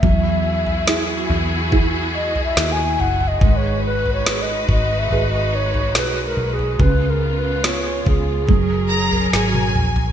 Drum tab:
SD |----o-------o---|----o-------o---|----o-------o---|
T1 |----------------|----------------|-------------o--|
T2 |----------------|----------------|--------------o-|
FT |o--o--o-o--o--oo|o--o--o-o--o--oo|o-----o-o--o---o|
BD |o-------o-------|o-----o---------|o-----o-o-------|